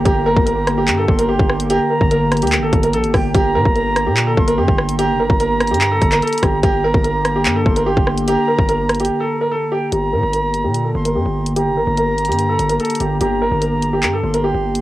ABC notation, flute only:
X:1
M:4/4
L:1/8
Q:1/4=146
K:Gm
V:1 name="Flute"
b4- b c'3 | b4 z3 g | b4- b c'3 | b8 |
b4- b c'3 | b4 z3 g | b4- b c'3 | b8 |
b4- b c'3 |]